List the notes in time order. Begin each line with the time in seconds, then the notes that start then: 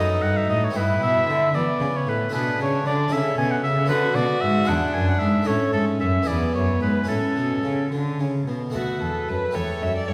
Already playing: F#2 B3 D#4 F#4 A4 D#5
0.22 G2 F#5
0.37 E5
0.49 A2 D#5
0.64 C#5
0.70 B3 E4 G4
0.75 G2 E4 B4
1.01 B2 E5
1.28 D3
1.54 E3 B3 D5
1.80 C#3
1.96 C#5
2.07 A2 B4
2.29 B2 D4 E4 G#4
2.34 B2 D4 B4
2.59 C#3 C#5
2.86 D3 D5
3.08 C#3 C#4 E4 A4
3.12 C#3 C#4 E5
3.38 B2 G#5
3.51 F#5
3.63 C#3 E5
3.86 D3 B3 F#4 B4
3.90 D3 F#4
4.15 B2 D5
4.41 G#2 E5
4.64 G#3 E4 B4 F#5
4.68 E2 D4
4.93 F#2 G#5
5.08 F#5
5.19 G#2 E5
5.42 A3 E4 A4
5.46 A2 C#4 C#5
5.73 G#2 A4
6.00 F#2 E5
6.23 B3 E4 G#4
6.27 E2 B3 D5
6.54 F#2 C#5
6.81 G#2 B4
7.04 C#4 E4 A4
7.08 A2 C#4 A4
7.36 B2
7.63 C#3
7.92 D3
8.20 C#3
8.47 B2
8.70 A3 F#4 A4
8.74 D2 F#4 B4
9.01 E2 A4
9.29 F#2 B4
9.51 E2 A3 G4 A4
9.55 E2 A4 C#5
9.82 F#2 E5
9.97 D5
10.08 G2 C#5